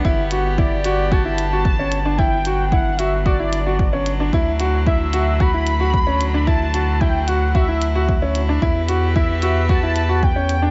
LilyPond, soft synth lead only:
\new Staff \with { instrumentName = "Soft synth lead" } { \time 4/4 \key d \major \tempo 4 = 112 r4 d''4 a''2 | g''4 fis''8 e''8 d''4. r8 | r4 e''4 b''2 | a''4 g''8 fis''8 e''4. r8 |
r4 e''4 a''4 g''4 | }